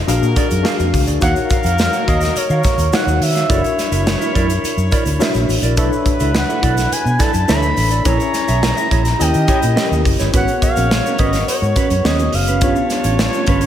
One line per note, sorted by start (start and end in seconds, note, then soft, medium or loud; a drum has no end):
0.00 0.10 B4 medium
0.00 0.09 F5 medium
0.07 0.19 A#1 loud
0.07 0.91 A#3 medium
0.07 0.60 D4 medium
0.07 0.91 F#4 medium
0.07 0.60 F#4 medium
0.07 0.60 G#4 medium
0.07 0.91 A#4 medium
0.07 0.60 A#4 medium
0.07 0.60 F5 loud
0.07 closed hi-hat medium
0.07 shaker medium
0.22 0.33 A#2 medium
0.22 muted clean electric guitar stroke soft
0.22 shaker soft
0.36 0.53 F#4 medium
0.36 0.50 G#4 medium
0.36 0.49 D5 medium
0.36 kick medium
0.36 closed hi-hat medium
0.36 shaker medium
0.50 0.62 F#2 medium
0.50 muted clean electric guitar stroke soft
0.50 closed hi-hat medium
0.50 shaker medium
0.63 1.16 D4 medium
0.63 1.16 F#4 medium
0.63 0.82 F#4 medium
0.63 1.16 G#4 medium
0.63 0.79 G#4 medium
0.63 1.17 A#4 medium
0.63 1.17 F5 medium
0.63 0.78 F5 loud
0.63 snare loud
0.63 shaker medium
0.79 0.90 F2 medium
0.79 muted clean electric guitar stroke soft
0.79 closed hi-hat soft
0.79 shaker soft
0.93 1.05 C#2 medium
0.93 muted clean electric guitar stroke soft
0.93 kick medium
0.93 open hi-hat medium
0.93 shaker soft
1.07 1.19 D2 medium
1.07 1.21 F#4 medium
1.07 1.21 G#4 medium
1.07 1.20 D5 medium
1.07 closed hi-hat medium
1.07 shaker soft
1.20 1.33 D#2 loud
1.20 3.17 A#3 medium
1.20 2.25 D#4 medium
1.20 2.26 F#4 medium
1.20 3.17 F#4 medium
1.20 1.38 F#4 medium
1.20 2.26 A#4 medium
1.20 3.17 A#4 medium
1.20 2.26 C#5 medium
1.20 1.36 C#5 medium
1.20 2.26 F5 medium
1.20 1.35 F5 medium
1.20 1.35 F#5 loud
1.20 kick loud
1.20 closed hi-hat medium
1.20 shaker medium
1.36 muted clean electric guitar stroke soft
1.36 closed hi-hat soft
1.36 shaker soft
1.50 2.03 F5 loud
1.50 muted clean electric guitar stroke soft
1.50 kick medium
1.50 closed hi-hat medium
1.50 shaker soft
1.63 1.87 F2 medium
1.63 1.78 F#4 medium
1.63 1.78 C#5 medium
1.63 1.78 F#5 medium
1.63 closed hi-hat medium
1.63 shaker soft
1.78 snare loud
1.78 shaker medium
1.93 2.06 F#4 soft
1.93 2.07 C#5 medium
1.93 2.06 F#5 medium
1.93 closed hi-hat soft
1.93 shaker soft
2.07 2.30 D#2 medium
2.07 2.24 F#4 medium
2.07 2.22 C#5 medium
2.07 2.38 D#5 loud
2.07 2.22 F5 medium
2.07 kick medium
2.07 closed hi-hat medium
2.21 muted clean electric guitar stroke soft
2.21 snare soft
2.21 closed hi-hat medium
2.21 shaker soft
2.36 2.95 C#5 loud
2.36 muted fingered electric bass stroke soft
2.36 muted clean electric guitar stroke soft
2.36 closed hi-hat medium
2.36 shaker medium
2.50 2.61 D#3 loud
2.50 2.63 F#4 medium
2.50 2.64 C#5 medium
2.50 2.64 F5 medium
2.50 shaker soft
2.63 muted clean electric guitar stroke soft
2.63 kick medium
2.63 snare soft
2.63 closed hi-hat medium
2.63 shaker medium
2.77 2.89 D#2 loud
2.77 muted clean electric guitar stroke medium
2.77 closed hi-hat medium
2.77 shaker soft
2.93 3.45 D#4 medium
2.93 3.09 F#4 medium
2.93 3.45 F#4 medium
2.93 3.45 A#4 medium
2.93 3.07 C#5 loud
2.93 3.45 C#5 medium
2.93 3.45 F5 medium
2.93 3.24 F#5 medium
2.93 3.07 F#5 loud
2.93 snare loud
2.93 shaker medium
3.07 3.18 D#2 loud
3.07 muted clean electric guitar stroke soft
3.07 shaker soft
3.20 3.43 D#3 loud
3.20 4.07 E5 loud
3.20 muted clean electric guitar stroke soft
3.20 open hi-hat medium
3.20 shaker medium
3.35 3.49 F#4 medium
3.35 3.49 C#5 medium
3.35 3.48 F5 medium
3.35 snare soft
3.35 closed hi-hat soft
3.35 shaker soft
3.49 3.61 F#1 loud
3.49 4.54 D4 medium
3.49 3.66 E4 medium
3.49 5.45 E4 medium
3.49 4.54 F#4 medium
3.49 3.57 A4 medium
3.49 3.63 A#4 medium
3.49 5.45 A#4 medium
3.49 5.45 C#5 medium
3.49 4.54 C#5 medium
3.49 3.63 D5 medium
3.49 4.55 E5 medium
3.49 kick loud
3.49 closed hi-hat medium
3.49 shaker medium
3.57 4.58 A#4 medium
3.64 muted clean electric guitar stroke soft
3.64 closed hi-hat soft
3.64 shaker soft
3.78 muted clean electric guitar stroke soft
3.78 snare soft
3.78 closed hi-hat medium
3.78 shaker medium
3.92 4.14 F#1 medium
3.92 4.05 E4 medium
3.92 4.05 A#4 medium
3.92 4.05 E5 medium
3.92 closed hi-hat medium
3.92 shaker soft
4.06 muted clean electric guitar stroke soft
4.06 snare loud
4.06 shaker medium
4.20 4.33 E4 medium
4.20 4.34 A#4 medium
4.20 4.33 E5 medium
4.20 closed hi-hat soft
4.20 shaker medium
4.34 4.58 F#2 medium
4.34 4.51 E4 medium
4.34 4.48 A#4 medium
4.34 4.48 D5 medium
4.34 kick medium
4.34 closed hi-hat medium
4.49 muted clean electric guitar stroke soft
4.49 closed hi-hat medium
4.49 shaker soft
4.63 muted fingered electric bass stroke soft
4.63 closed hi-hat medium
4.63 shaker medium
4.77 4.89 F#2 loud
4.77 muted clean electric guitar stroke soft
4.77 shaker soft
4.91 5.08 E4 medium
4.91 5.05 A#4 medium
4.91 5.05 D5 loud
4.91 kick medium
4.91 closed hi-hat medium
4.91 shaker medium
5.05 5.17 D2 medium
5.05 muted clean electric guitar stroke soft
5.05 closed hi-hat medium
5.05 shaker soft
5.19 5.72 D4 medium
5.19 5.37 E4 medium
5.19 5.72 F#4 medium
5.19 5.72 A#4 medium
5.19 5.35 A#4 medium
5.19 5.72 C#5 medium
5.19 5.73 E5 medium
5.19 5.35 E5 medium
5.19 snare loud
5.19 shaker medium
5.34 5.46 A#1 medium
5.34 muted clean electric guitar stroke soft
5.34 closed hi-hat soft
5.34 shaker soft
5.49 5.60 A1 medium
5.49 muted clean electric guitar stroke soft
5.49 open hi-hat medium
5.49 shaker medium
5.62 5.77 A#1 medium
5.62 5.77 E4 medium
5.62 5.76 A#4 medium
5.62 5.76 D5 medium
5.62 closed hi-hat medium
5.62 shaker medium
5.77 5.89 B1 loud
5.77 6.82 D4 medium
5.77 7.73 E4 medium
5.77 5.94 E4 medium
5.77 7.73 F#4 medium
5.77 6.82 A4 medium
5.77 5.92 A4 medium
5.77 7.73 B4 medium
5.77 6.82 B4 medium
5.77 6.82 C#5 medium
5.77 5.91 D5 medium
5.77 6.82 E5 loud
5.77 kick loud
5.77 closed hi-hat loud
5.77 shaker medium
5.93 muted clean electric guitar stroke soft
5.93 shaker soft
6.06 muted clean electric guitar stroke soft
6.06 kick medium
6.06 closed hi-hat medium
6.06 shaker soft
6.20 6.43 C#2 medium
6.20 6.34 E4 medium
6.20 6.34 A4 medium
6.20 6.33 E5 medium
6.20 closed hi-hat medium
6.20 shaker soft
6.35 6.94 F#5 medium
6.35 muted clean electric guitar stroke soft
6.35 snare loud
6.35 shaker medium
6.48 6.61 E4 medium
6.48 6.62 A4 medium
6.48 6.62 E5 medium
6.48 shaker medium
6.62 6.85 B1 medium
6.62 6.79 E4 medium
6.62 6.76 A4 medium
6.62 6.76 D5 medium
6.62 kick medium
6.62 closed hi-hat medium
6.77 muted clean electric guitar stroke medium
6.77 snare soft
6.77 closed hi-hat medium
6.77 shaker soft
6.91 7.22 G#5 loud
6.91 muted fingered electric bass stroke soft
6.91 closed hi-hat medium
6.91 shaker medium
7.05 7.17 B2 medium
7.05 muted clean electric guitar stroke soft
7.05 shaker soft
7.19 7.36 E4 medium
7.19 7.33 A4 medium
7.19 7.33 D5 loud
7.19 7.49 A5 loud
7.19 kick medium
7.19 snare soft
7.19 closed hi-hat medium
7.19 shaker medium
7.33 7.45 F#2 medium
7.33 muted clean electric guitar stroke soft
7.33 closed hi-hat medium
7.33 shaker soft
7.48 7.71 D2 medium
7.48 8.00 D4 medium
7.48 7.65 E4 medium
7.48 8.00 A4 medium
7.48 7.62 A4 medium
7.48 8.01 B4 medium
7.48 8.01 C#5 medium
7.48 8.01 E5 medium
7.48 7.62 E5 medium
7.48 8.00 B5 loud
7.48 snare loud
7.48 shaker medium
7.63 muted clean electric guitar stroke soft
7.63 shaker soft
7.77 7.99 A1 medium
7.77 muted clean electric guitar stroke soft
7.77 open hi-hat medium
7.77 shaker medium
7.91 8.04 E4 medium
7.91 8.04 A4 medium
7.91 8.04 D5 medium
7.91 closed hi-hat medium
7.91 shaker medium
8.00 8.07 B5 medium
8.05 8.16 A#1 loud
8.05 9.10 C#4 medium
8.05 8.22 E4 medium
8.05 9.10 E4 medium
8.05 8.89 G#4 medium
8.05 8.19 G#4 medium
8.05 9.10 G#4 medium
8.05 8.89 A#4 medium
8.05 9.10 A#4 medium
8.05 8.89 C#5 medium
8.05 8.19 C#5 loud
8.05 9.10 E5 medium
8.05 9.23 A#5 loud
8.05 kick loud
8.05 closed hi-hat medium
8.05 shaker medium
8.20 muted clean electric guitar stroke soft
8.20 closed hi-hat soft
8.20 shaker soft
8.34 muted clean electric guitar stroke soft
8.34 snare soft
8.34 closed hi-hat medium
8.34 shaker medium
8.48 8.71 B1 medium
8.48 8.62 E4 medium
8.48 8.61 G#4 medium
8.48 8.61 E5 medium
8.48 closed hi-hat medium
8.48 shaker soft
8.63 muted clean electric guitar stroke soft
8.63 snare loud
8.63 shaker medium
8.77 8.90 E4 medium
8.77 8.90 G#4 medium
8.77 8.90 E5 medium
8.77 shaker medium
8.91 9.13 A#1 medium
8.91 9.08 E4 medium
8.91 9.04 G#4 medium
8.91 9.04 C#5 medium
8.91 kick medium
8.91 closed hi-hat medium
9.05 muted clean electric guitar stroke soft
9.05 snare soft
9.05 closed hi-hat medium
9.05 shaker soft
9.19 9.31 D#2 loud
9.19 9.72 C#4 medium
9.19 9.72 E4 medium
9.19 10.03 G4 medium
9.19 9.72 G4 medium
9.19 10.03 A#4 medium
9.19 9.72 A#4 medium
9.19 10.03 D#5 loud
9.19 9.72 D#5 medium
9.19 10.06 G5 medium
9.19 closed hi-hat medium
9.19 shaker medium
9.33 9.46 D#3 loud
9.33 muted clean electric guitar stroke medium
9.33 closed hi-hat soft
9.33 shaker soft
9.48 9.65 E4 medium
9.48 9.62 G4 loud
9.48 9.61 C#5 medium
9.48 kick medium
9.48 closed hi-hat medium
9.48 shaker medium
9.62 9.74 A#2 medium
9.62 muted clean electric guitar stroke soft
9.62 closed hi-hat medium
9.62 shaker soft
9.76 10.29 C#4 medium
9.76 9.93 E4 medium
9.76 10.29 E4 medium
9.76 10.28 G4 medium
9.76 9.90 G4 medium
9.76 10.29 A#4 medium
9.76 10.29 D#5 medium
9.76 9.90 D#5 loud
9.76 snare loud
9.76 shaker medium
9.91 10.02 D#2 medium
9.91 muted clean electric guitar stroke medium
9.91 shaker soft
10.05 10.16 F#1 medium
10.05 muted clean electric guitar stroke soft
10.05 kick medium
10.05 open hi-hat medium
10.05 shaker soft
10.19 10.31 G1 loud
10.19 10.33 E4 medium
10.19 10.33 G4 medium
10.19 10.32 C#5 medium
10.19 snare soft
10.19 closed hi-hat soft
10.19 shaker medium
10.33 10.45 G#1 loud
10.33 11.38 B3 medium
10.33 10.50 C#4 medium
10.33 12.29 F#4 medium
10.33 11.38 F#4 medium
10.33 10.47 F#4 medium
10.33 11.38 G#4 medium
10.33 12.29 A#4 medium
10.33 11.39 A#4 medium
10.33 10.46 B4 medium
10.33 12.29 C#5 medium
10.33 11.38 C#5 medium
10.33 10.61 F#5 loud
10.33 kick loud
10.33 closed hi-hat loud
10.33 shaker medium
10.47 muted clean electric guitar stroke soft
10.47 closed hi-hat soft
10.47 shaker soft
10.62 11.16 F5 loud
10.62 muted clean electric guitar stroke soft
10.62 kick medium
10.62 closed hi-hat medium
10.62 shaker medium
10.76 10.99 A#1 medium
10.76 10.90 C#4 medium
10.76 10.90 F#4 medium
10.76 10.89 C#5 medium
10.76 closed hi-hat medium
10.76 shaker soft
10.91 muted clean electric guitar stroke soft
10.91 snare loud
10.91 shaker medium
11.05 11.18 C#4 soft
11.05 11.19 F#4 medium
11.05 11.18 C#5 medium
11.05 shaker medium
11.18 11.41 G#1 medium
11.18 11.36 C#4 medium
11.18 11.34 F#4 loud
11.18 11.33 B4 medium
11.18 11.46 D#5 medium
11.18 kick medium
11.18 closed hi-hat medium
11.33 muted clean electric guitar stroke soft
11.33 snare soft
11.33 closed hi-hat medium
11.33 shaker soft
11.48 12.07 C#5 medium
11.48 muted fingered electric bass stroke soft
11.48 closed hi-hat medium
11.48 shaker medium
11.62 11.73 G#2 loud
11.62 muted clean electric guitar stroke soft
11.62 shaker soft
11.76 11.93 C#4 medium
11.76 11.90 F#4 medium
11.76 11.89 B4 loud
11.76 kick medium
11.76 closed hi-hat medium
11.76 shaker medium
11.90 12.02 F#2 medium
11.90 muted clean electric guitar stroke medium
11.90 closed hi-hat medium
11.90 shaker soft
12.04 12.27 D#2 medium
12.04 12.57 B3 medium
12.04 12.21 C#4 loud
12.04 12.19 F#4 medium
12.04 12.57 F#4 medium
12.04 12.57 G#4 medium
12.04 12.58 A#4 medium
12.04 12.19 C#5 medium
12.04 12.58 C#5 medium
12.04 12.36 D#5 medium
12.04 snare loud
12.04 shaker medium
12.19 muted clean electric guitar stroke soft
12.19 closed hi-hat soft
12.19 shaker soft
12.33 12.62 F#1 medium
12.33 13.19 F5 loud
12.33 muted clean electric guitar stroke soft
12.33 open hi-hat medium
12.33 shaker soft
12.47 12.61 C#4 medium
12.47 12.61 F#4 medium
12.47 12.61 B4 medium
12.47 closed hi-hat medium
12.47 shaker medium
12.61 12.73 G1 loud
12.61 13.66 B3 medium
12.61 12.79 C#4 medium
12.61 13.66 D4 medium
12.61 13.66 F4 medium
12.61 12.77 F4 medium
12.61 13.66 G4 medium
12.61 12.76 B4 medium
12.61 13.66 C#5 medium
12.61 kick loud
12.61 closed hi-hat loud
12.61 shaker medium
12.76 muted clean electric guitar stroke soft
12.76 shaker soft
12.90 muted clean electric guitar stroke soft
12.90 snare soft
12.90 closed hi-hat medium
12.90 shaker medium
13.04 13.27 A1 medium
13.04 13.19 C#4 medium
13.04 13.18 F4 medium
13.04 13.18 C#5 medium
13.04 closed hi-hat medium
13.04 shaker soft
13.19 snare loud
13.19 shaker medium
13.33 13.47 C#4 medium
13.33 13.47 F4 medium
13.33 13.47 C#5 medium
13.33 closed hi-hat soft
13.33 shaker soft
13.46 13.66 G1 medium
13.46 13.64 C#4 medium
13.46 13.62 F4 medium
13.46 13.61 B4 medium
13.46 kick medium
13.46 closed hi-hat medium
13.61 muted clean electric guitar stroke soft
13.61 closed hi-hat medium
13.61 shaker soft